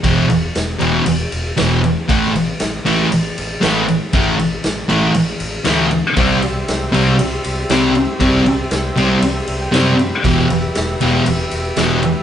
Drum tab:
RD |xxxxxxxx|xxxxxxxx|xxxxxxxx|xxxxxxxx|
SD |--o---o-|--o---o-|--o---o-|--o---o-|
BD |o-------|o-------|o-------|o-------|

RD |xxxxxxxx|xxxxxxxx|
SD |--o---o-|--o---o-|
BD |o-------|o-------|